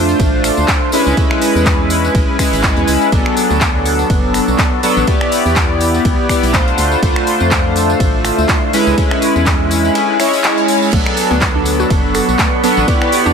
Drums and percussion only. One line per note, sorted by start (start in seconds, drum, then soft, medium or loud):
0.09 tambourine soft
0.19 kick loud
0.19 ride medium
0.19 tambourine soft
0.19 shaker medium
0.44 finger snap medium
0.44 open hi-hat loud
0.44 tambourine loud
0.57 tambourine medium
0.68 kick loud
0.68 snare loud
0.68 clap loud
0.68 ride medium
0.92 open hi-hat loud
0.92 tambourine medium
1.07 tambourine medium
1.17 kick loud
1.17 ride medium
1.17 tambourine soft
1.17 shaker medium
1.31 finger snap medium
1.31 snare medium
1.42 open hi-hat loud
1.42 tambourine loud
1.56 tambourine medium
1.66 kick loud
1.66 snare loud
1.66 clap loud
1.66 ride medium
1.66 tambourine soft
1.90 open hi-hat loud
1.90 tambourine medium
2.04 snare medium
2.04 tambourine medium
2.14 kick loud
2.14 ride medium
2.14 tambourine soft
2.14 shaker medium
2.39 finger snap medium
2.39 kick medium
2.39 open hi-hat loud
2.39 tambourine medium
2.53 closed hi-hat soft
2.53 open hi-hat medium
2.53 tambourine medium
2.63 kick loud
2.63 snare loud
2.63 clap loud
2.63 ride medium
2.63 tambourine soft
2.77 closed hi-hat soft
2.87 open hi-hat loud
2.87 tambourine medium
3.01 tambourine medium
3.12 kick loud
3.12 ride medium
3.12 tambourine soft
3.12 shaker medium
3.26 finger snap medium
3.37 open hi-hat loud
3.37 tambourine loud
3.50 snare medium
3.50 tambourine medium
3.61 kick loud
3.61 snare loud
3.61 clap loud
3.61 ride medium
3.61 tambourine soft
3.61 shaker loud
3.74 snare soft
3.86 open hi-hat loud
3.86 tambourine medium
3.99 tambourine soft
4.10 kick loud
4.10 ride medium
4.10 tambourine soft
4.10 shaker medium
4.34 finger snap medium
4.34 open hi-hat loud
4.34 tambourine loud
4.48 tambourine medium
4.58 kick loud
4.58 snare loud
4.58 clap loud
4.58 ride medium
4.58 tambourine soft
4.83 open hi-hat loud
4.83 tambourine medium
4.97 tambourine soft
5.07 kick loud
5.07 ride medium
5.07 tambourine soft
5.07 shaker medium
5.21 finger snap medium
5.21 snare medium
5.32 open hi-hat loud
5.32 tambourine medium
5.46 tambourine medium
5.56 kick loud
5.56 snare loud
5.56 clap loud
5.56 ride medium
5.56 tambourine soft
5.81 open hi-hat loud
5.81 tambourine medium
5.94 snare medium
5.94 tambourine medium
6.05 kick loud
6.05 ride medium
6.05 tambourine soft
6.05 shaker medium
6.29 finger snap medium
6.29 kick medium
6.29 open hi-hat loud
6.29 tambourine medium
6.43 closed hi-hat soft
6.43 open hi-hat medium
6.43 tambourine medium
6.54 kick loud
6.54 snare loud
6.54 clap loud
6.54 ride medium
6.54 tambourine soft
6.68 closed hi-hat soft
6.78 snare loud
6.78 open hi-hat loud
6.78 tambourine medium
6.92 snare soft
6.92 tambourine soft
7.03 kick loud
7.03 ride medium
7.03 tambourine soft
7.03 shaker medium
7.16 finger snap medium
7.27 open hi-hat loud
7.27 tambourine medium
7.40 snare medium
7.40 tambourine medium
7.51 kick loud
7.51 snare loud
7.51 clap loud
7.51 ride medium
7.51 shaker medium
7.65 snare soft
7.76 open hi-hat loud
7.76 tambourine medium
7.90 tambourine medium
8.00 kick loud
8.00 ride medium
8.00 tambourine soft
8.00 shaker loud
8.25 finger snap medium
8.25 open hi-hat loud
8.25 tambourine medium
8.38 tambourine soft
8.49 kick loud
8.49 snare loud
8.49 clap loud
8.49 ride medium
8.49 tambourine soft
8.49 shaker medium
8.73 open hi-hat loud
8.73 tambourine loud
8.87 tambourine medium
8.98 kick loud
8.98 ride medium
8.98 tambourine soft
8.98 shaker medium
9.11 finger snap medium
9.11 snare medium
9.22 open hi-hat loud
9.22 tambourine medium
9.36 tambourine medium
9.46 kick loud
9.46 snare loud
9.46 clap loud
9.46 ride medium
9.46 tambourine soft
9.46 shaker medium
9.71 open hi-hat loud
9.71 tambourine medium
9.84 snare medium
9.84 tambourine medium
9.94 snare loud
9.94 ride medium
9.94 tambourine soft
9.94 shaker medium
10.09 snare soft
10.20 finger snap medium
10.20 open hi-hat loud
10.20 tambourine loud
10.33 closed hi-hat soft
10.33 open hi-hat medium
10.33 tambourine medium
10.44 snare loud
10.44 clap loud
10.44 ride medium
10.44 tambourine soft
10.58 closed hi-hat soft
10.68 open hi-hat loud
10.68 tambourine medium
10.82 tambourine soft
10.93 kick loud
10.93 ride medium
10.93 tambourine soft
10.93 crash medium
10.93 shaker medium
11.06 finger snap medium
11.17 open hi-hat loud
11.17 tambourine medium
11.31 snare medium
11.31 tambourine soft
11.41 kick loud
11.41 snare loud
11.41 clap loud
11.41 ride medium
11.41 tambourine soft
11.41 shaker loud
11.55 snare medium
11.65 open hi-hat loud
11.65 tambourine medium
11.80 tambourine medium
11.90 kick loud
11.90 ride medium
11.90 tambourine soft
11.90 shaker medium
12.14 finger snap medium
12.14 open hi-hat loud
12.14 tambourine medium
12.29 tambourine medium
12.39 kick loud
12.39 snare loud
12.39 clap loud
12.39 ride medium
12.64 open hi-hat loud
12.64 tambourine medium
12.77 tambourine medium
12.88 kick loud
12.88 ride medium
12.88 tambourine soft
12.88 shaker medium
13.01 finger snap medium
13.01 snare medium
13.12 open hi-hat loud
13.12 tambourine medium
13.26 tambourine medium